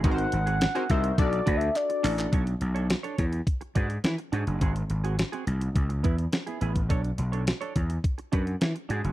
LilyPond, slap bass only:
\new Staff \with { instrumentName = "Slap bass" } { \clef bass \time 4/4 \key b \dorian \tempo 4 = 105 gis,,8 gis,,8. r16 bis,,8 b,,8 d,8 r8 a,,8 | b,,8 b,,8. r16 e,8 r8 gis,8 e16 r16 gis,16 fis,,16 | gis,,8 gis,,8. r16 bis,,8 cis,8 e,8 r8 a,,8 | b,,8 b,,8. r16 e,8 r8 fis,8 e16 r16 gis,16 fis,,16 | }